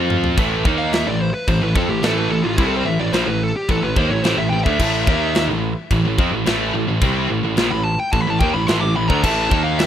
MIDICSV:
0, 0, Header, 1, 5, 480
1, 0, Start_track
1, 0, Key_signature, 0, "minor"
1, 0, Tempo, 554017
1, 325, Time_signature, 4, 2, 24, 8
1, 8547, End_track
2, 0, Start_track
2, 0, Title_t, "Lead electric guitar"
2, 0, Program_c, 0, 29
2, 678, Note_on_c, 0, 77, 85
2, 797, Note_off_c, 0, 77, 0
2, 806, Note_on_c, 0, 76, 91
2, 921, Note_off_c, 0, 76, 0
2, 929, Note_on_c, 0, 74, 84
2, 1042, Note_off_c, 0, 74, 0
2, 1048, Note_on_c, 0, 72, 87
2, 1158, Note_off_c, 0, 72, 0
2, 1161, Note_on_c, 0, 71, 82
2, 1278, Note_off_c, 0, 71, 0
2, 1288, Note_on_c, 0, 72, 81
2, 1401, Note_off_c, 0, 72, 0
2, 1408, Note_on_c, 0, 71, 76
2, 1519, Note_on_c, 0, 69, 80
2, 1521, Note_off_c, 0, 71, 0
2, 1640, Note_off_c, 0, 69, 0
2, 1640, Note_on_c, 0, 67, 71
2, 1757, Note_off_c, 0, 67, 0
2, 1776, Note_on_c, 0, 69, 78
2, 1885, Note_off_c, 0, 69, 0
2, 1886, Note_on_c, 0, 71, 86
2, 1988, Note_on_c, 0, 69, 87
2, 2000, Note_off_c, 0, 71, 0
2, 2101, Note_on_c, 0, 65, 72
2, 2111, Note_off_c, 0, 69, 0
2, 2227, Note_off_c, 0, 65, 0
2, 2231, Note_on_c, 0, 64, 89
2, 2298, Note_on_c, 0, 69, 81
2, 2313, Note_off_c, 0, 64, 0
2, 2386, Note_off_c, 0, 69, 0
2, 2395, Note_on_c, 0, 72, 78
2, 2471, Note_on_c, 0, 76, 96
2, 2475, Note_off_c, 0, 72, 0
2, 2592, Note_off_c, 0, 76, 0
2, 2595, Note_on_c, 0, 74, 91
2, 2711, Note_off_c, 0, 74, 0
2, 2714, Note_on_c, 0, 72, 90
2, 2833, Note_off_c, 0, 72, 0
2, 2846, Note_on_c, 0, 71, 87
2, 2959, Note_off_c, 0, 71, 0
2, 2974, Note_on_c, 0, 69, 89
2, 3084, Note_off_c, 0, 69, 0
2, 3088, Note_on_c, 0, 67, 74
2, 3201, Note_off_c, 0, 67, 0
2, 3214, Note_on_c, 0, 69, 75
2, 3321, Note_on_c, 0, 71, 87
2, 3323, Note_off_c, 0, 69, 0
2, 3437, Note_off_c, 0, 71, 0
2, 3441, Note_on_c, 0, 72, 89
2, 3553, Note_off_c, 0, 72, 0
2, 3556, Note_on_c, 0, 73, 94
2, 3662, Note_off_c, 0, 73, 0
2, 3666, Note_on_c, 0, 72, 93
2, 3789, Note_off_c, 0, 72, 0
2, 3795, Note_on_c, 0, 76, 79
2, 3893, Note_off_c, 0, 76, 0
2, 3897, Note_on_c, 0, 79, 106
2, 4016, Note_off_c, 0, 79, 0
2, 4020, Note_on_c, 0, 76, 74
2, 4715, Note_off_c, 0, 76, 0
2, 6684, Note_on_c, 0, 83, 95
2, 6791, Note_off_c, 0, 83, 0
2, 6795, Note_on_c, 0, 81, 96
2, 6915, Note_off_c, 0, 81, 0
2, 6926, Note_on_c, 0, 79, 85
2, 7033, Note_on_c, 0, 81, 85
2, 7040, Note_off_c, 0, 79, 0
2, 7110, Note_off_c, 0, 81, 0
2, 7110, Note_on_c, 0, 83, 111
2, 7191, Note_off_c, 0, 83, 0
2, 7191, Note_on_c, 0, 81, 90
2, 7271, Note_on_c, 0, 79, 93
2, 7274, Note_off_c, 0, 81, 0
2, 7393, Note_off_c, 0, 79, 0
2, 7394, Note_on_c, 0, 83, 89
2, 7510, Note_off_c, 0, 83, 0
2, 7510, Note_on_c, 0, 84, 99
2, 7628, Note_off_c, 0, 84, 0
2, 7631, Note_on_c, 0, 86, 112
2, 7753, Note_off_c, 0, 86, 0
2, 7764, Note_on_c, 0, 83, 116
2, 7868, Note_off_c, 0, 83, 0
2, 7871, Note_on_c, 0, 82, 99
2, 8000, Note_off_c, 0, 82, 0
2, 8000, Note_on_c, 0, 81, 92
2, 8347, Note_on_c, 0, 77, 84
2, 8362, Note_off_c, 0, 81, 0
2, 8471, Note_off_c, 0, 77, 0
2, 8475, Note_on_c, 0, 76, 81
2, 8547, Note_off_c, 0, 76, 0
2, 8547, End_track
3, 0, Start_track
3, 0, Title_t, "Distorted electric guitar"
3, 0, Program_c, 1, 30
3, 0, Note_on_c, 1, 53, 96
3, 0, Note_on_c, 1, 60, 121
3, 0, Note_on_c, 1, 65, 108
3, 316, Note_off_c, 1, 53, 0
3, 320, Note_off_c, 1, 60, 0
3, 320, Note_on_c, 1, 45, 100
3, 323, Note_on_c, 1, 52, 101
3, 324, Note_off_c, 1, 65, 0
3, 331, Note_on_c, 1, 57, 104
3, 555, Note_off_c, 1, 45, 0
3, 556, Note_off_c, 1, 52, 0
3, 560, Note_off_c, 1, 57, 0
3, 562, Note_on_c, 1, 51, 90
3, 567, Note_on_c, 1, 58, 98
3, 573, Note_on_c, 1, 63, 84
3, 915, Note_off_c, 1, 51, 0
3, 917, Note_off_c, 1, 58, 0
3, 920, Note_off_c, 1, 63, 0
3, 924, Note_on_c, 1, 45, 55
3, 926, Note_on_c, 1, 52, 72
3, 1115, Note_off_c, 1, 45, 0
3, 1116, Note_off_c, 1, 52, 0
3, 1287, Note_on_c, 1, 45, 71
3, 1291, Note_on_c, 1, 52, 67
3, 1389, Note_off_c, 1, 45, 0
3, 1393, Note_off_c, 1, 52, 0
3, 1399, Note_on_c, 1, 45, 70
3, 1404, Note_on_c, 1, 52, 64
3, 1516, Note_off_c, 1, 45, 0
3, 1519, Note_on_c, 1, 53, 91
3, 1523, Note_off_c, 1, 52, 0
3, 1528, Note_on_c, 1, 60, 107
3, 1633, Note_off_c, 1, 53, 0
3, 1637, Note_off_c, 1, 60, 0
3, 1641, Note_on_c, 1, 45, 65
3, 1643, Note_on_c, 1, 52, 75
3, 1741, Note_off_c, 1, 45, 0
3, 1748, Note_off_c, 1, 52, 0
3, 1751, Note_on_c, 1, 45, 90
3, 1759, Note_on_c, 1, 52, 98
3, 1762, Note_on_c, 1, 57, 118
3, 1989, Note_off_c, 1, 45, 0
3, 1992, Note_off_c, 1, 52, 0
3, 1994, Note_off_c, 1, 57, 0
3, 2003, Note_on_c, 1, 45, 71
3, 2006, Note_on_c, 1, 52, 73
3, 2101, Note_off_c, 1, 45, 0
3, 2103, Note_off_c, 1, 52, 0
3, 2112, Note_on_c, 1, 45, 64
3, 2114, Note_on_c, 1, 52, 68
3, 2227, Note_off_c, 1, 45, 0
3, 2231, Note_off_c, 1, 52, 0
3, 2231, Note_on_c, 1, 48, 100
3, 2234, Note_on_c, 1, 55, 104
3, 2242, Note_on_c, 1, 60, 117
3, 2467, Note_off_c, 1, 48, 0
3, 2470, Note_off_c, 1, 55, 0
3, 2471, Note_on_c, 1, 45, 64
3, 2474, Note_off_c, 1, 60, 0
3, 2474, Note_on_c, 1, 52, 70
3, 2582, Note_off_c, 1, 52, 0
3, 2585, Note_off_c, 1, 45, 0
3, 2593, Note_on_c, 1, 52, 77
3, 2595, Note_on_c, 1, 45, 65
3, 2704, Note_off_c, 1, 45, 0
3, 2707, Note_on_c, 1, 46, 92
3, 2711, Note_off_c, 1, 52, 0
3, 2715, Note_on_c, 1, 53, 106
3, 2823, Note_off_c, 1, 46, 0
3, 2827, Note_on_c, 1, 45, 64
3, 2829, Note_off_c, 1, 53, 0
3, 2832, Note_on_c, 1, 52, 68
3, 3025, Note_off_c, 1, 45, 0
3, 3028, Note_off_c, 1, 52, 0
3, 3194, Note_on_c, 1, 45, 70
3, 3196, Note_on_c, 1, 52, 77
3, 3302, Note_off_c, 1, 45, 0
3, 3304, Note_off_c, 1, 52, 0
3, 3313, Note_on_c, 1, 45, 62
3, 3314, Note_on_c, 1, 52, 74
3, 3429, Note_off_c, 1, 45, 0
3, 3432, Note_on_c, 1, 51, 97
3, 3437, Note_off_c, 1, 52, 0
3, 3442, Note_on_c, 1, 58, 101
3, 3547, Note_off_c, 1, 51, 0
3, 3551, Note_on_c, 1, 45, 64
3, 3553, Note_off_c, 1, 58, 0
3, 3556, Note_on_c, 1, 52, 66
3, 3660, Note_off_c, 1, 45, 0
3, 3670, Note_off_c, 1, 52, 0
3, 3670, Note_on_c, 1, 45, 88
3, 3680, Note_on_c, 1, 52, 111
3, 3788, Note_off_c, 1, 45, 0
3, 3789, Note_off_c, 1, 52, 0
3, 3798, Note_on_c, 1, 45, 72
3, 3799, Note_on_c, 1, 52, 82
3, 3907, Note_off_c, 1, 45, 0
3, 3912, Note_off_c, 1, 52, 0
3, 3917, Note_on_c, 1, 45, 70
3, 3922, Note_on_c, 1, 52, 84
3, 4030, Note_off_c, 1, 45, 0
3, 4034, Note_on_c, 1, 50, 79
3, 4039, Note_off_c, 1, 52, 0
3, 4042, Note_on_c, 1, 57, 90
3, 4150, Note_off_c, 1, 50, 0
3, 4154, Note_off_c, 1, 57, 0
3, 4156, Note_on_c, 1, 45, 92
3, 4160, Note_on_c, 1, 52, 93
3, 4166, Note_on_c, 1, 57, 107
3, 4391, Note_off_c, 1, 45, 0
3, 4393, Note_off_c, 1, 52, 0
3, 4395, Note_on_c, 1, 51, 104
3, 4396, Note_off_c, 1, 57, 0
3, 4402, Note_on_c, 1, 58, 87
3, 4408, Note_on_c, 1, 63, 104
3, 4751, Note_off_c, 1, 51, 0
3, 4754, Note_off_c, 1, 58, 0
3, 4757, Note_off_c, 1, 63, 0
3, 4758, Note_on_c, 1, 45, 61
3, 4761, Note_on_c, 1, 52, 69
3, 4951, Note_off_c, 1, 45, 0
3, 4952, Note_off_c, 1, 52, 0
3, 5126, Note_on_c, 1, 45, 68
3, 5127, Note_on_c, 1, 52, 77
3, 5232, Note_off_c, 1, 45, 0
3, 5233, Note_off_c, 1, 52, 0
3, 5242, Note_on_c, 1, 45, 67
3, 5243, Note_on_c, 1, 52, 67
3, 5350, Note_off_c, 1, 45, 0
3, 5353, Note_on_c, 1, 53, 92
3, 5357, Note_off_c, 1, 52, 0
3, 5360, Note_on_c, 1, 60, 117
3, 5465, Note_off_c, 1, 53, 0
3, 5468, Note_on_c, 1, 45, 63
3, 5470, Note_off_c, 1, 60, 0
3, 5473, Note_on_c, 1, 52, 67
3, 5583, Note_off_c, 1, 45, 0
3, 5588, Note_off_c, 1, 52, 0
3, 5593, Note_on_c, 1, 45, 98
3, 5598, Note_on_c, 1, 52, 98
3, 5606, Note_on_c, 1, 57, 114
3, 5826, Note_off_c, 1, 45, 0
3, 5830, Note_off_c, 1, 52, 0
3, 5836, Note_off_c, 1, 57, 0
3, 5836, Note_on_c, 1, 45, 64
3, 5840, Note_on_c, 1, 52, 78
3, 5946, Note_off_c, 1, 45, 0
3, 5951, Note_off_c, 1, 52, 0
3, 5956, Note_on_c, 1, 45, 54
3, 5962, Note_on_c, 1, 52, 73
3, 6071, Note_off_c, 1, 45, 0
3, 6075, Note_on_c, 1, 48, 101
3, 6080, Note_off_c, 1, 52, 0
3, 6083, Note_on_c, 1, 55, 101
3, 6089, Note_on_c, 1, 60, 125
3, 6307, Note_off_c, 1, 48, 0
3, 6311, Note_on_c, 1, 45, 57
3, 6312, Note_off_c, 1, 55, 0
3, 6316, Note_on_c, 1, 52, 70
3, 6318, Note_off_c, 1, 60, 0
3, 6429, Note_off_c, 1, 52, 0
3, 6430, Note_off_c, 1, 45, 0
3, 6439, Note_on_c, 1, 52, 76
3, 6440, Note_on_c, 1, 45, 66
3, 6547, Note_off_c, 1, 45, 0
3, 6551, Note_on_c, 1, 46, 91
3, 6555, Note_off_c, 1, 52, 0
3, 6558, Note_on_c, 1, 53, 92
3, 6669, Note_off_c, 1, 46, 0
3, 6673, Note_off_c, 1, 53, 0
3, 6677, Note_on_c, 1, 45, 68
3, 6680, Note_on_c, 1, 52, 67
3, 6871, Note_off_c, 1, 45, 0
3, 6873, Note_off_c, 1, 52, 0
3, 7043, Note_on_c, 1, 45, 61
3, 7046, Note_on_c, 1, 52, 75
3, 7155, Note_off_c, 1, 45, 0
3, 7158, Note_off_c, 1, 52, 0
3, 7166, Note_on_c, 1, 45, 73
3, 7168, Note_on_c, 1, 52, 69
3, 7283, Note_off_c, 1, 45, 0
3, 7285, Note_off_c, 1, 52, 0
3, 7286, Note_on_c, 1, 51, 87
3, 7292, Note_on_c, 1, 58, 107
3, 7397, Note_off_c, 1, 51, 0
3, 7400, Note_off_c, 1, 58, 0
3, 7407, Note_on_c, 1, 45, 58
3, 7411, Note_on_c, 1, 52, 64
3, 7503, Note_off_c, 1, 45, 0
3, 7512, Note_off_c, 1, 52, 0
3, 7513, Note_on_c, 1, 45, 91
3, 7523, Note_on_c, 1, 52, 114
3, 7627, Note_off_c, 1, 45, 0
3, 7632, Note_off_c, 1, 52, 0
3, 7637, Note_on_c, 1, 45, 58
3, 7643, Note_on_c, 1, 52, 68
3, 7750, Note_off_c, 1, 45, 0
3, 7754, Note_off_c, 1, 52, 0
3, 7761, Note_on_c, 1, 45, 67
3, 7765, Note_on_c, 1, 52, 71
3, 7881, Note_off_c, 1, 45, 0
3, 7884, Note_off_c, 1, 52, 0
3, 7885, Note_on_c, 1, 50, 92
3, 7893, Note_on_c, 1, 57, 92
3, 7993, Note_off_c, 1, 50, 0
3, 7997, Note_on_c, 1, 45, 90
3, 7998, Note_off_c, 1, 57, 0
3, 8001, Note_on_c, 1, 52, 99
3, 8009, Note_on_c, 1, 57, 104
3, 8233, Note_off_c, 1, 45, 0
3, 8235, Note_off_c, 1, 52, 0
3, 8239, Note_off_c, 1, 57, 0
3, 8242, Note_on_c, 1, 51, 79
3, 8245, Note_on_c, 1, 58, 89
3, 8253, Note_on_c, 1, 63, 101
3, 8547, Note_off_c, 1, 51, 0
3, 8547, Note_off_c, 1, 58, 0
3, 8547, Note_off_c, 1, 63, 0
3, 8547, End_track
4, 0, Start_track
4, 0, Title_t, "Picked electric bass"
4, 0, Program_c, 2, 34
4, 0, Note_on_c, 2, 41, 89
4, 289, Note_off_c, 2, 41, 0
4, 325, Note_on_c, 2, 33, 95
4, 547, Note_off_c, 2, 33, 0
4, 564, Note_on_c, 2, 39, 82
4, 898, Note_off_c, 2, 39, 0
4, 927, Note_on_c, 2, 33, 73
4, 1148, Note_off_c, 2, 33, 0
4, 1278, Note_on_c, 2, 33, 77
4, 1391, Note_off_c, 2, 33, 0
4, 1400, Note_on_c, 2, 33, 70
4, 1512, Note_off_c, 2, 33, 0
4, 1519, Note_on_c, 2, 41, 90
4, 1632, Note_off_c, 2, 41, 0
4, 1638, Note_on_c, 2, 33, 89
4, 1751, Note_off_c, 2, 33, 0
4, 1755, Note_on_c, 2, 33, 83
4, 1981, Note_off_c, 2, 33, 0
4, 1993, Note_on_c, 2, 33, 85
4, 2108, Note_off_c, 2, 33, 0
4, 2112, Note_on_c, 2, 33, 85
4, 2228, Note_off_c, 2, 33, 0
4, 2236, Note_on_c, 2, 36, 107
4, 2461, Note_off_c, 2, 36, 0
4, 2470, Note_on_c, 2, 33, 69
4, 2586, Note_off_c, 2, 33, 0
4, 2594, Note_on_c, 2, 33, 81
4, 2704, Note_off_c, 2, 33, 0
4, 2710, Note_on_c, 2, 34, 97
4, 2822, Note_off_c, 2, 34, 0
4, 2827, Note_on_c, 2, 33, 81
4, 3056, Note_off_c, 2, 33, 0
4, 3200, Note_on_c, 2, 33, 88
4, 3305, Note_off_c, 2, 33, 0
4, 3310, Note_on_c, 2, 33, 83
4, 3426, Note_off_c, 2, 33, 0
4, 3431, Note_on_c, 2, 39, 94
4, 3547, Note_off_c, 2, 39, 0
4, 3552, Note_on_c, 2, 33, 86
4, 3664, Note_off_c, 2, 33, 0
4, 3669, Note_on_c, 2, 33, 91
4, 3780, Note_off_c, 2, 33, 0
4, 3786, Note_on_c, 2, 33, 84
4, 3904, Note_off_c, 2, 33, 0
4, 3908, Note_on_c, 2, 33, 79
4, 4025, Note_off_c, 2, 33, 0
4, 4036, Note_on_c, 2, 38, 99
4, 4146, Note_off_c, 2, 38, 0
4, 4152, Note_on_c, 2, 33, 96
4, 4379, Note_off_c, 2, 33, 0
4, 4398, Note_on_c, 2, 39, 92
4, 4734, Note_off_c, 2, 39, 0
4, 4746, Note_on_c, 2, 33, 72
4, 4976, Note_off_c, 2, 33, 0
4, 5119, Note_on_c, 2, 33, 81
4, 5224, Note_off_c, 2, 33, 0
4, 5229, Note_on_c, 2, 33, 83
4, 5346, Note_off_c, 2, 33, 0
4, 5358, Note_on_c, 2, 41, 102
4, 5466, Note_off_c, 2, 41, 0
4, 5471, Note_on_c, 2, 33, 87
4, 5587, Note_off_c, 2, 33, 0
4, 5593, Note_on_c, 2, 33, 82
4, 5820, Note_off_c, 2, 33, 0
4, 5839, Note_on_c, 2, 33, 81
4, 5952, Note_off_c, 2, 33, 0
4, 5958, Note_on_c, 2, 33, 77
4, 6071, Note_off_c, 2, 33, 0
4, 6082, Note_on_c, 2, 36, 100
4, 6305, Note_off_c, 2, 36, 0
4, 6326, Note_on_c, 2, 33, 66
4, 6436, Note_off_c, 2, 33, 0
4, 6441, Note_on_c, 2, 33, 81
4, 6553, Note_off_c, 2, 33, 0
4, 6562, Note_on_c, 2, 34, 99
4, 6673, Note_off_c, 2, 34, 0
4, 6684, Note_on_c, 2, 33, 80
4, 6906, Note_off_c, 2, 33, 0
4, 7045, Note_on_c, 2, 33, 83
4, 7156, Note_off_c, 2, 33, 0
4, 7166, Note_on_c, 2, 33, 78
4, 7276, Note_off_c, 2, 33, 0
4, 7286, Note_on_c, 2, 39, 94
4, 7396, Note_off_c, 2, 39, 0
4, 7405, Note_on_c, 2, 33, 85
4, 7516, Note_off_c, 2, 33, 0
4, 7520, Note_on_c, 2, 33, 88
4, 7633, Note_off_c, 2, 33, 0
4, 7640, Note_on_c, 2, 33, 83
4, 7753, Note_off_c, 2, 33, 0
4, 7764, Note_on_c, 2, 33, 81
4, 7875, Note_off_c, 2, 33, 0
4, 7883, Note_on_c, 2, 38, 104
4, 7995, Note_off_c, 2, 38, 0
4, 8004, Note_on_c, 2, 33, 96
4, 8227, Note_off_c, 2, 33, 0
4, 8244, Note_on_c, 2, 39, 85
4, 8547, Note_off_c, 2, 39, 0
4, 8547, End_track
5, 0, Start_track
5, 0, Title_t, "Drums"
5, 89, Note_on_c, 9, 45, 98
5, 175, Note_off_c, 9, 45, 0
5, 206, Note_on_c, 9, 43, 91
5, 293, Note_off_c, 9, 43, 0
5, 326, Note_on_c, 9, 36, 118
5, 329, Note_on_c, 9, 52, 72
5, 413, Note_off_c, 9, 36, 0
5, 416, Note_off_c, 9, 52, 0
5, 565, Note_on_c, 9, 36, 111
5, 652, Note_off_c, 9, 36, 0
5, 804, Note_on_c, 9, 52, 60
5, 813, Note_on_c, 9, 38, 109
5, 891, Note_off_c, 9, 52, 0
5, 900, Note_off_c, 9, 38, 0
5, 1280, Note_on_c, 9, 36, 85
5, 1282, Note_on_c, 9, 52, 62
5, 1367, Note_off_c, 9, 36, 0
5, 1369, Note_off_c, 9, 52, 0
5, 1521, Note_on_c, 9, 36, 110
5, 1607, Note_off_c, 9, 36, 0
5, 1758, Note_on_c, 9, 52, 57
5, 1768, Note_on_c, 9, 38, 115
5, 1845, Note_off_c, 9, 52, 0
5, 1854, Note_off_c, 9, 38, 0
5, 2236, Note_on_c, 9, 36, 108
5, 2237, Note_on_c, 9, 52, 63
5, 2323, Note_off_c, 9, 36, 0
5, 2323, Note_off_c, 9, 52, 0
5, 2713, Note_on_c, 9, 52, 54
5, 2723, Note_on_c, 9, 38, 96
5, 2800, Note_off_c, 9, 52, 0
5, 2809, Note_off_c, 9, 38, 0
5, 3196, Note_on_c, 9, 36, 93
5, 3198, Note_on_c, 9, 52, 51
5, 3283, Note_off_c, 9, 36, 0
5, 3285, Note_off_c, 9, 52, 0
5, 3435, Note_on_c, 9, 36, 111
5, 3521, Note_off_c, 9, 36, 0
5, 3674, Note_on_c, 9, 52, 63
5, 3683, Note_on_c, 9, 38, 104
5, 3760, Note_off_c, 9, 52, 0
5, 3770, Note_off_c, 9, 38, 0
5, 4037, Note_on_c, 9, 36, 89
5, 4124, Note_off_c, 9, 36, 0
5, 4156, Note_on_c, 9, 36, 95
5, 4156, Note_on_c, 9, 49, 103
5, 4156, Note_on_c, 9, 52, 60
5, 4243, Note_off_c, 9, 36, 0
5, 4243, Note_off_c, 9, 49, 0
5, 4243, Note_off_c, 9, 52, 0
5, 4395, Note_on_c, 9, 36, 120
5, 4482, Note_off_c, 9, 36, 0
5, 4634, Note_on_c, 9, 52, 61
5, 4644, Note_on_c, 9, 38, 109
5, 4721, Note_off_c, 9, 52, 0
5, 4730, Note_off_c, 9, 38, 0
5, 5118, Note_on_c, 9, 36, 95
5, 5121, Note_on_c, 9, 52, 58
5, 5205, Note_off_c, 9, 36, 0
5, 5208, Note_off_c, 9, 52, 0
5, 5359, Note_on_c, 9, 36, 120
5, 5445, Note_off_c, 9, 36, 0
5, 5599, Note_on_c, 9, 52, 65
5, 5609, Note_on_c, 9, 38, 112
5, 5686, Note_off_c, 9, 52, 0
5, 5695, Note_off_c, 9, 38, 0
5, 6079, Note_on_c, 9, 36, 118
5, 6080, Note_on_c, 9, 52, 64
5, 6166, Note_off_c, 9, 36, 0
5, 6167, Note_off_c, 9, 52, 0
5, 6557, Note_on_c, 9, 52, 62
5, 6566, Note_on_c, 9, 38, 104
5, 6643, Note_off_c, 9, 52, 0
5, 6653, Note_off_c, 9, 38, 0
5, 7040, Note_on_c, 9, 52, 55
5, 7042, Note_on_c, 9, 36, 92
5, 7126, Note_off_c, 9, 52, 0
5, 7129, Note_off_c, 9, 36, 0
5, 7283, Note_on_c, 9, 36, 105
5, 7369, Note_off_c, 9, 36, 0
5, 7521, Note_on_c, 9, 52, 57
5, 7531, Note_on_c, 9, 38, 112
5, 7608, Note_off_c, 9, 52, 0
5, 7617, Note_off_c, 9, 38, 0
5, 7883, Note_on_c, 9, 36, 86
5, 7970, Note_off_c, 9, 36, 0
5, 8003, Note_on_c, 9, 36, 96
5, 8006, Note_on_c, 9, 49, 103
5, 8006, Note_on_c, 9, 52, 68
5, 8090, Note_off_c, 9, 36, 0
5, 8093, Note_off_c, 9, 49, 0
5, 8093, Note_off_c, 9, 52, 0
5, 8243, Note_on_c, 9, 36, 110
5, 8330, Note_off_c, 9, 36, 0
5, 8481, Note_on_c, 9, 52, 64
5, 8491, Note_on_c, 9, 38, 114
5, 8547, Note_off_c, 9, 38, 0
5, 8547, Note_off_c, 9, 52, 0
5, 8547, End_track
0, 0, End_of_file